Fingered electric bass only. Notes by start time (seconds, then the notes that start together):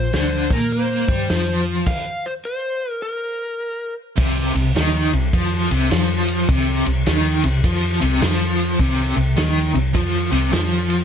Already playing: A#1
0.14 D2
0.51 A#2
1.09 G2
1.30 F2
4.18 C2
4.55 C2
4.76 D#2
5.13 C2
5.33 F2
5.71 C2
5.91 F2
6.49 C2
6.87 C2
7.07 D#2
7.44 C2
7.64 F2
8.02 C2
8.22 F2
8.80 C2
9.17 C2
9.38 D#2
9.75 C2
9.95 F2
10.32 C2
10.52 F2